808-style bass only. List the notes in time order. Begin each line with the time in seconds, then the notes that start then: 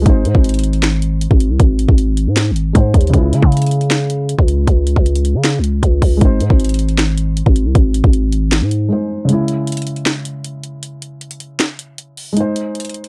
0.06 G#1
0.25 G#2
0.35 G#1
1.31 G#1
1.50 C2
1.60 G#1
1.88 G#1
2.27 G#2
2.51 G#1
2.75 G#2
2.94 D#2
3.14 C#2
3.33 C#3
3.42 C#3
4.39 C#2
4.67 C#2
4.96 C#2
5.35 C#3
5.59 C#2
5.83 C#2
6.02 C#2
6.21 G#1
6.40 G#2
6.50 G#1
7.46 G#1
7.65 C2
7.75 G#1
8.04 G#1
8.62 G#2